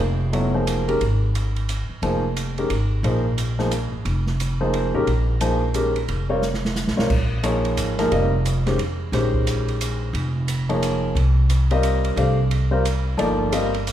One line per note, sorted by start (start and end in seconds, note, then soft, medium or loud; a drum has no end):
0.00 0.97 F1 medium
0.33 0.52 F#3 medium
0.33 0.52 B3 soft
0.33 0.52 E4 soft
0.33 0.52 A4 soft
0.33 0.52 C#5 medium
0.33 ride medium
0.54 0.84 F3 medium
0.54 0.84 A#3 soft
0.54 0.84 D#4 soft
0.54 0.84 G#4 soft
0.54 0.84 C5 medium
0.67 hi-hat pedal medium
0.67 ride medium
0.88 1.00 D#3 medium
0.88 0.99 G#3 medium
0.88 0.99 C#4 medium
0.88 1.00 G4 medium
0.88 1.00 A#4 medium
0.88 ride soft
1.01 1.86 G#1 medium
1.01 ride medium
1.35 hi-hat pedal soft
1.35 ride medium
1.56 ride soft
1.69 hi-hat pedal soft
1.69 ride medium
1.89 muted upright bass stroke soft
2.02 2.66 F1 medium
2.02 2.22 F3 medium
2.02 2.22 A#3 medium
2.02 2.22 D#4 soft
2.02 2.22 G#4 medium
2.02 2.22 C5 medium
2.02 ride soft
2.37 hi-hat pedal soft
2.37 ride medium
2.58 2.69 D#3 medium
2.58 2.69 G#3 soft
2.58 2.69 C#4 soft
2.58 2.69 G4 soft
2.58 2.69 A#4 medium
2.58 ride soft
2.70 3.02 G#1 medium
2.70 ride medium
3.03 3.88 A#1 medium
3.03 3.23 F3 medium
3.03 3.23 A#3 soft
3.03 3.23 D#4 soft
3.03 3.23 G#4 soft
3.03 3.23 C5 medium
3.03 ride medium
3.38 hi-hat pedal soft
3.38 ride medium
3.59 3.70 F3 medium
3.59 3.70 A#3 medium
3.59 3.70 D#4 soft
3.59 3.70 G#4 medium
3.59 3.70 C5 medium
3.59 snare soft
3.71 hi-hat pedal medium
3.71 ride medium
3.92 4.04 A1 medium
4.05 4.90 F1 medium
4.05 ride medium
4.27 snare soft
4.40 hi-hat pedal medium
4.40 ride medium
4.61 4.92 F3 medium
4.61 4.92 A#3 medium
4.61 4.92 D#4 medium
4.61 4.92 G#4 medium
4.61 4.92 C5 medium
4.74 ride medium
4.94 5.06 A1 medium
4.94 5.06 D#3 medium
4.94 5.06 G#3 medium
4.94 5.06 C#4 medium
4.94 5.06 G4 medium
4.94 5.06 A#4 medium
5.07 6.04 A#1 medium
5.07 ride soft
5.41 5.60 F3 medium
5.41 5.60 A#3 medium
5.41 5.60 D#4 medium
5.41 5.60 G#4 medium
5.41 5.60 C5 medium
5.41 hi-hat pedal soft
5.41 ride medium
5.74 5.93 D#3 medium
5.74 5.94 G#3 medium
5.74 5.94 C#4 medium
5.74 5.94 G4 medium
5.74 5.94 A#4 medium
5.74 hi-hat pedal medium
5.74 ride medium
5.96 ride soft
6.08 6.83 F1 medium
6.08 ride medium
6.29 6.41 G3 medium
6.29 6.41 C4 medium
6.29 6.41 F4 medium
6.29 6.41 A#4 medium
6.29 6.41 C#5 medium
6.42 snare soft
6.42 hi-hat pedal soft
6.54 snare soft
6.65 snare medium
6.76 snare medium
6.76 hi-hat pedal medium
6.87 6.98 A#1 medium
6.87 snare medium
6.97 7.09 B1 medium
6.97 7.08 G3 medium
6.97 7.08 C4 medium
6.97 7.09 F4 medium
6.97 7.09 A#4 medium
6.97 7.09 C#5 medium
6.97 snare medium
7.10 7.73 A#1 medium
7.10 kick medium
7.10 crash medium
7.43 7.94 F3 medium
7.43 7.94 A#3 medium
7.43 7.94 D#4 medium
7.43 7.94 G#4 medium
7.43 7.94 C#5 medium
7.43 hi-hat pedal soft
7.43 ride medium
7.65 ride soft
7.77 8.09 G#1 medium
7.77 hi-hat pedal medium
7.77 ride medium
7.99 8.10 F3 medium
7.99 8.10 A#3 medium
7.99 8.10 D#4 medium
7.99 8.10 G#4 medium
7.99 8.10 A#4 medium
7.99 snare soft
7.99 ride soft
8.11 8.75 F1 medium
8.11 8.30 G3 medium
8.11 8.30 C4 medium
8.11 8.31 F4 medium
8.11 8.30 A#4 medium
8.11 8.30 D#5 medium
8.11 ride medium
8.45 hi-hat pedal medium
8.45 ride medium
8.66 8.78 D#3 medium
8.66 8.78 G#3 medium
8.66 8.78 C#4 medium
8.66 8.78 G4 soft
8.66 8.78 C5 medium
8.66 snare soft
8.66 ride soft
8.78 9.10 F2 medium
8.78 ride medium
9.12 10.10 A#1 medium
9.12 10.07 D#3 medium
9.12 10.07 G#3 medium
9.12 10.07 C#4 medium
9.12 10.07 G4 medium
9.12 10.07 C5 medium
9.12 snare soft
9.12 ride medium
9.34 kick medium
9.47 hi-hat pedal medium
9.47 ride medium
9.68 ride soft
9.81 hi-hat pedal medium
9.81 ride medium
10.13 11.11 F1 medium
10.13 ride medium
10.48 hi-hat pedal medium
10.48 ride medium
10.69 11.13 F3 medium
10.69 11.13 A#3 medium
10.69 11.13 D#4 medium
10.69 11.13 G#4 medium
10.69 11.13 C#5 medium
10.69 ride soft
10.83 hi-hat pedal medium
10.83 ride medium
11.15 12.13 C2 medium
11.15 ride medium
11.50 hi-hat pedal medium
11.50 ride medium
11.71 12.15 G3 medium
11.71 12.15 C4 medium
11.71 12.15 F4 medium
11.71 12.15 A#4 medium
11.71 12.15 D#5 medium
11.71 ride soft
11.83 hi-hat pedal medium
11.83 ride medium
12.04 ride soft
12.16 13.14 C2 medium
12.16 12.36 A3 medium
12.16 12.36 D4 medium
12.16 12.36 G4 medium
12.16 12.36 C5 medium
12.16 12.36 F5 medium
12.16 ride medium
12.51 ride medium
12.71 12.83 G3 medium
12.71 12.83 C4 medium
12.71 12.83 F4 medium
12.71 12.83 A#4 medium
12.71 12.83 C5 medium
12.85 hi-hat pedal medium
12.85 ride medium
13.17 13.92 G1 medium
13.17 13.51 F3 medium
13.17 13.51 A#3 medium
13.17 13.51 D#4 medium
13.17 13.51 A4 medium
13.17 13.51 D5 medium
13.17 ride medium
13.52 13.71 G3 medium
13.52 13.72 C4 medium
13.52 13.72 F4 medium
13.52 13.72 A#4 medium
13.52 13.72 D#5 medium
13.52 hi-hat pedal medium
13.52 ride medium
13.74 ride soft
13.87 hi-hat pedal medium
13.87 ride medium